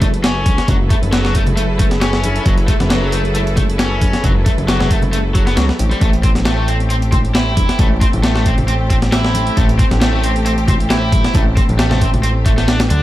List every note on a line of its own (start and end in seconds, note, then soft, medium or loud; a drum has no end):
0.00 0.48 F#1 loud
0.00 5.75 F#3 medium
0.00 0.06 A3 medium
0.00 5.76 E4 medium
0.00 5.76 G#4 medium
0.00 5.75 A4 medium
0.00 5.76 B4 medium
0.00 kick medium
0.00 closed hi-hat medium
0.00 low conga medium
0.14 closed hi-hat soft
0.24 0.67 C#4 loud
0.24 snare loud
0.24 closed hi-hat medium
0.24 closed hi-hat soft
0.46 0.60 C#2 medium
0.46 kick loud
0.46 closed hi-hat medium
0.46 high conga medium
0.58 snare soft
0.58 closed hi-hat soft
0.68 0.95 F#1 loud
0.68 0.75 F#3 medium
0.68 kick loud
0.68 closed hi-hat medium
0.68 closed hi-hat soft
0.68 low conga medium
0.90 0.95 A3 medium
0.90 kick loud
0.90 closed hi-hat medium
1.02 2.40 F#1 medium
1.02 closed hi-hat soft
1.02 high conga medium
1.13 1.23 F#3 loud
1.13 snare loud
1.13 closed hi-hat medium
1.13 closed hi-hat soft
1.24 1.34 F#3 loud
1.24 snare medium
1.35 1.42 A3 medium
1.35 kick medium
1.35 closed hi-hat medium
1.46 closed hi-hat soft
1.46 low conga medium
1.57 1.61 A3 medium
1.57 closed hi-hat medium
1.57 closed hi-hat soft
1.79 1.84 A3 medium
1.79 kick medium
1.79 closed hi-hat medium
1.91 snare soft
1.91 closed hi-hat soft
2.01 2.45 C#4 loud
2.01 snare loud
2.01 closed hi-hat medium
2.01 closed hi-hat soft
2.13 snare medium
2.24 closed hi-hat medium
2.24 high conga medium
2.36 closed hi-hat soft
2.46 2.73 F#1 loud
2.46 2.53 F#3 medium
2.46 kick loud
2.46 closed hi-hat medium
2.46 closed hi-hat soft
2.58 closed hi-hat soft
2.68 2.72 A3 medium
2.68 kick medium
2.68 closed hi-hat medium
2.80 4.17 F#1 medium
2.80 snare soft
2.80 closed hi-hat soft
2.80 high conga medium
2.90 3.01 F#3 loud
2.90 snare loud
2.90 closed hi-hat medium
2.90 closed hi-hat soft
3.02 3.12 F#3 loud
3.12 3.20 A3 medium
3.12 closed hi-hat medium
3.25 closed hi-hat soft
3.35 3.39 A3 medium
3.35 closed hi-hat medium
3.35 closed hi-hat soft
3.47 closed hi-hat soft
3.56 3.61 A3 medium
3.56 kick medium
3.56 closed hi-hat medium
3.56 low conga medium
3.70 closed hi-hat soft
3.79 4.23 C#4 loud
3.79 snare loud
3.79 closed hi-hat medium
3.79 closed hi-hat soft
4.01 kick loud
4.01 closed hi-hat medium
4.01 high conga medium
4.13 snare soft
4.13 closed hi-hat soft
4.24 4.51 F#1 loud
4.24 4.31 F#3 medium
4.24 kick loud
4.24 closed hi-hat loud
4.24 closed hi-hat soft
4.24 low conga medium
4.46 4.50 A3 medium
4.46 kick loud
4.46 closed hi-hat medium
4.46 high conga medium
4.58 5.56 F#1 medium
4.58 closed hi-hat soft
4.58 high conga medium
4.68 4.79 F#3 loud
4.68 snare loud
4.68 closed hi-hat medium
4.68 closed hi-hat soft
4.80 4.89 F#3 loud
4.80 snare medium
4.80 low conga medium
4.90 4.97 A3 medium
4.90 kick medium
4.90 closed hi-hat medium
5.02 closed hi-hat soft
5.02 low conga medium
5.13 5.17 A3 medium
5.13 closed hi-hat soft
5.13 closed hi-hat medium
5.35 5.42 F#3 medium
5.35 kick medium
5.35 closed hi-hat medium
5.46 5.53 B3 medium
5.46 snare soft
5.46 closed hi-hat soft
5.57 5.71 C#2 medium
5.57 5.64 F#3 loud
5.57 snare loud
5.57 closed hi-hat medium
5.57 closed hi-hat soft
5.69 snare medium
5.79 5.94 A1 medium
5.79 13.03 A3 medium
5.79 13.03 C4 medium
5.79 13.03 G4 medium
5.79 closed hi-hat medium
5.79 high conga medium
5.91 6.00 G3 medium
5.91 closed hi-hat soft
6.01 7.58 A1 loud
6.01 6.09 A3 medium
6.01 kick loud
6.01 closed hi-hat medium
6.01 closed hi-hat soft
6.13 closed hi-hat soft
6.23 6.28 C4 medium
6.23 kick loud
6.23 closed hi-hat medium
6.35 snare soft
6.35 closed hi-hat soft
6.35 high conga medium
6.45 6.57 A3 loud
6.45 snare loud
6.45 closed hi-hat medium
6.45 closed hi-hat soft
6.58 6.67 A3 loud
6.68 6.75 C4 medium
6.68 closed hi-hat medium
6.80 closed hi-hat soft
6.90 6.95 C4 medium
6.90 closed hi-hat medium
6.90 closed hi-hat soft
7.02 closed hi-hat soft
7.12 7.17 C4 medium
7.12 kick medium
7.12 closed hi-hat medium
7.12 low conga medium
7.25 closed hi-hat soft
7.35 7.78 E4 loud
7.35 snare loud
7.35 closed hi-hat medium
7.35 closed hi-hat soft
7.57 7.71 E1 medium
7.57 kick medium
7.57 closed hi-hat medium
7.57 high conga medium
7.69 snare soft
7.69 closed hi-hat soft
7.79 8.06 A1 loud
7.79 7.87 A3 medium
7.79 kick loud
7.79 closed hi-hat medium
7.79 closed hi-hat soft
7.79 low conga medium
8.01 8.06 C4 medium
8.01 kick medium
8.01 closed hi-hat medium
8.13 9.51 A1 medium
8.13 closed hi-hat soft
8.13 high conga medium
8.23 8.34 A3 loud
8.23 snare loud
8.23 closed hi-hat medium
8.23 closed hi-hat soft
8.35 8.45 A3 loud
8.35 snare medium
8.46 8.53 C4 medium
8.46 kick medium
8.46 closed hi-hat medium
8.58 closed hi-hat soft
8.58 low conga medium
8.68 8.72 C4 medium
8.68 closed hi-hat medium
8.68 closed hi-hat soft
8.90 8.95 C4 medium
8.90 kick medium
8.90 closed hi-hat medium
9.02 snare soft
9.02 closed hi-hat soft
9.12 9.56 E4 medium
9.12 snare loud
9.12 closed hi-hat medium
9.12 closed hi-hat soft
9.25 snare medium
9.34 closed hi-hat medium
9.34 high conga medium
9.47 closed hi-hat soft
9.57 9.84 A1 loud
9.57 9.64 A3 medium
9.57 kick loud
9.57 closed hi-hat soft
9.57 closed hi-hat medium
9.69 closed hi-hat soft
9.79 9.84 C4 medium
9.79 kick loud
9.79 closed hi-hat medium
9.91 11.28 A1 medium
9.91 snare soft
9.91 closed hi-hat soft
9.91 high conga medium
10.01 10.12 A3 loud
10.01 snare loud
10.01 closed hi-hat medium
10.01 closed hi-hat soft
10.14 10.23 A3 loud
10.23 10.31 C4 medium
10.23 closed hi-hat medium
10.36 closed hi-hat soft
10.46 10.50 C4 medium
10.46 closed hi-hat medium
10.46 closed hi-hat soft
10.58 closed hi-hat soft
10.68 10.73 C4 medium
10.68 kick medium
10.68 closed hi-hat medium
10.68 low conga medium
10.80 closed hi-hat soft
10.90 11.34 E4 loud
10.90 snare loud
10.90 closed hi-hat medium
10.90 closed hi-hat soft
11.12 kick loud
11.12 closed hi-hat medium
11.12 high conga medium
11.25 snare medium
11.25 closed hi-hat soft
11.34 11.62 A1 medium
11.34 11.42 A3 medium
11.34 kick loud
11.34 closed hi-hat loud
11.34 closed hi-hat soft
11.34 low conga medium
11.57 11.61 C4 medium
11.57 kick loud
11.57 closed hi-hat medium
11.57 high conga medium
11.69 12.90 A1 medium
11.69 closed hi-hat soft
11.69 high conga medium
11.79 11.90 A3 loud
11.79 snare loud
11.79 closed hi-hat medium
11.79 closed hi-hat soft
11.91 12.00 A3 loud
11.91 snare medium
11.91 low conga medium
12.01 12.09 C4 medium
12.01 kick medium
12.01 closed hi-hat medium
12.13 closed hi-hat soft
12.13 low conga medium
12.23 12.28 C4 medium
12.23 closed hi-hat medium
12.23 closed hi-hat soft
12.46 12.50 A3 medium
12.46 kick loud
12.46 closed hi-hat medium
12.57 12.67 A3 medium
12.57 snare soft
12.57 closed hi-hat soft
12.68 12.79 D4 loud
12.68 snare loud
12.68 closed hi-hat medium
12.68 closed hi-hat soft
12.80 snare loud
12.80 closed hi-hat medium
12.90 13.03 D2 medium
12.90 13.01 D4 medium
12.90 closed hi-hat medium
12.90 high conga medium